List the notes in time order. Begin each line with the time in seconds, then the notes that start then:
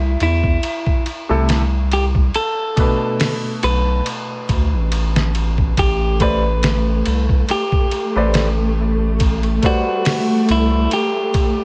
Already playing: C2 E4
0.20 E2 E4, ride
0.44 kick
0.63 ride
0.86 kick
1.06 ride
1.29 C2 C3 A3 E4 A4
1.49 snare, ride
1.92 G4, ride
2.15 kick
2.34 A4, ride
2.76 B2 A3 D4 B4, kick, ride
3.20 snare, open hi-hat
3.63 B1 B4, ride
4.06 ride
4.49 D2, kick, ride
4.73 A1
4.92 ride
5.16 snare
5.35 ride
5.58 kick
5.77 A1 A3 G4, kick, ride
6.20 A3 G4 B4 C5 D5, kick, ride
6.63 snare, ride
7.06 C2, ride
7.29 kick
7.49 G4, ride
7.72 kick
7.91 ride
8.16 A1 A3 G4 B4 C5 D5
8.34 snare, ride
9.20 kick, ride
9.43 ride
9.62 G3 A3 F#4 B4 C5 D5, kick, ride
10.05 snare, open hi-hat
10.49 C2 E4, ride
10.91 G4, ride
11.34 kick, ride